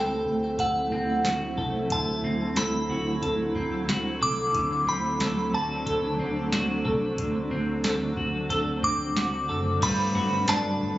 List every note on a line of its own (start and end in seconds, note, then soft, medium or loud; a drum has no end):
0.00 0.22 D2 medium
0.00 1.91 D3 medium
0.00 9.78 D3 medium
0.00 9.79 F#3 medium
0.00 9.78 A3 medium
0.00 0.91 C4 medium
0.00 9.78 C4 medium
0.00 4.51 E4 medium
0.00 0.58 A4 medium
0.00 0.61 G5 medium
0.26 0.55 D2 medium
0.59 0.88 D2 medium
0.59 1.57 A4 medium
0.59 1.95 F#5 medium
0.59 kick medium
0.59 closed hi-hat medium
0.92 1.21 D2 medium
0.92 2.23 C4 soft
1.24 1.54 D2 medium
1.24 2.89 F#4 medium
1.24 snare medium
1.24 closed hi-hat medium
1.58 1.87 C2 medium
1.58 2.56 A4 medium
1.58 kick medium
1.90 2.20 D2 loud
1.90 4.54 D3 medium
1.90 2.59 A5 medium
1.90 kick medium
1.90 closed hi-hat medium
2.24 2.53 D2 medium
2.24 3.54 C4 soft
2.56 2.86 D2 medium
2.56 3.21 A4 medium
2.56 4.27 B5 medium
2.56 snare medium
2.56 closed hi-hat medium
2.90 3.19 D2 medium
2.90 3.88 F#4 soft
3.22 3.52 D2 medium
3.22 4.20 A4 medium
3.22 kick medium
3.22 closed hi-hat medium
3.55 3.85 D2 medium
3.55 4.86 C4 soft
3.55 kick medium
3.89 4.18 D2 medium
3.89 5.53 F#4 medium
3.89 snare medium
3.89 closed hi-hat medium
4.21 4.51 C2 medium
4.21 5.19 A4 medium
4.21 4.90 D6 medium
4.54 4.84 D2 medium
4.54 7.18 D3 medium
4.54 9.78 D4 medium
4.54 kick loud
4.54 closed hi-hat medium
4.87 5.17 D2 medium
4.87 6.18 C4 medium
4.87 5.56 B5 medium
5.20 5.50 D2 medium
5.20 5.85 A4 medium
5.20 snare medium
5.20 closed hi-hat medium
5.54 5.83 D2 medium
5.54 6.52 F#4 soft
5.54 9.13 A5 medium
5.86 6.16 D2 medium
5.86 6.84 A4 medium
5.86 kick medium
5.86 closed hi-hat medium
6.19 6.49 D2 medium
6.19 7.50 C4 soft
6.52 6.82 D2 medium
6.52 8.17 F#4 medium
6.52 snare loud
6.52 closed hi-hat medium
6.85 7.15 C2 medium
6.85 7.83 A4 medium
6.85 kick medium
7.18 7.48 D2 loud
7.18 10.68 D3 medium
7.18 kick medium
7.18 closed hi-hat medium
7.51 7.80 D2 medium
7.51 8.82 C4 medium
7.84 8.13 D2 medium
7.84 8.49 A4 medium
7.84 snare loud
7.84 closed hi-hat medium
8.17 8.46 D2 medium
8.17 9.16 F#4 soft
8.17 kick medium
8.50 8.79 D2 medium
8.50 9.48 A4 medium
8.50 kick medium
8.50 closed hi-hat medium
8.83 9.12 D2 medium
8.83 9.89 C4 soft
8.83 9.86 D6 medium
8.83 kick medium
9.16 9.45 D2 medium
9.16 10.15 F#4 medium
9.16 snare loud
9.16 closed hi-hat medium
9.49 9.78 F#1 medium
9.49 9.82 A4 medium
9.82 10.11 G1 loud
9.82 10.98 G3 medium
9.82 10.98 D4 medium
9.82 10.98 A4 medium
9.82 10.98 B4 medium
9.82 10.50 B5 loud
9.82 kick loud
9.82 closed hi-hat medium
9.82 crash loud
10.15 10.44 G1 loud
10.15 10.81 F#4 medium
10.48 10.77 G1 loud
10.48 10.98 D4 medium
10.48 10.98 A5 medium
10.48 snare loud
10.48 closed hi-hat medium
10.48 tambourine medium
10.81 10.98 G1 loud